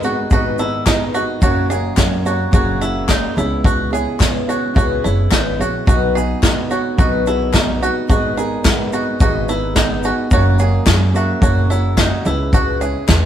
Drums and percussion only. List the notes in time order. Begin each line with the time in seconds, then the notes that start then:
0.03 shaker
0.31 kick, shaker
0.58 shaker
0.86 kick, snare, clap, shaker
1.15 shaker
1.42 kick, shaker
1.71 shaker
1.97 kick, snare, clap, shaker
2.26 shaker
2.53 kick, shaker
2.82 shaker
3.09 kick, snare, clap, shaker
3.38 shaker
3.64 kick, shaker
3.94 shaker
4.20 kick, snare, clap, shaker
4.50 shaker
4.76 kick, shaker
5.05 shaker
5.31 kick, snare, clap, shaker
5.61 shaker
5.87 kick, shaker
6.17 shaker
6.43 kick, snare, clap, shaker
6.71 shaker
6.98 kick, shaker
7.27 shaker
7.54 kick, snare, clap, shaker
7.83 shaker
8.10 kick, shaker
8.38 shaker
8.65 kick, snare, clap, shaker
8.93 shaker
9.20 kick, shaker
9.49 shaker
9.76 kick, snare, clap, shaker
10.03 shaker
10.31 kick, shaker
10.59 shaker
10.86 kick, snare, clap, shaker
11.15 shaker
11.42 kick, shaker
11.71 shaker
11.97 kick, snare, clap, shaker
12.25 shaker
12.53 kick, shaker
12.81 shaker
13.09 kick, snare, clap, shaker